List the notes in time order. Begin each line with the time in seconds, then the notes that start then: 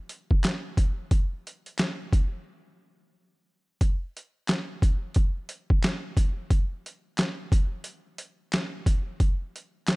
0.09 closed hi-hat
0.31 kick
0.44 snare, clap, closed hi-hat
0.77 kick, closed hi-hat
1.11 kick, closed hi-hat
1.47 closed hi-hat
1.66 closed hi-hat
1.78 snare, clap, closed hi-hat
2.13 kick, closed hi-hat
3.81 kick, closed hi-hat
4.17 closed hi-hat
4.48 snare, clap, closed hi-hat
4.82 kick, closed hi-hat
5.14 kick, closed hi-hat
5.49 closed hi-hat
5.70 kick
5.84 snare, clap, closed hi-hat
6.17 kick, closed hi-hat
6.50 kick, closed hi-hat
6.86 closed hi-hat
7.18 snare, clap, closed hi-hat
7.52 kick, closed hi-hat
7.84 closed hi-hat
8.18 closed hi-hat
8.53 snare, clap, closed hi-hat
8.86 kick, closed hi-hat
9.20 kick, closed hi-hat
9.56 closed hi-hat
9.87 snare, clap, closed hi-hat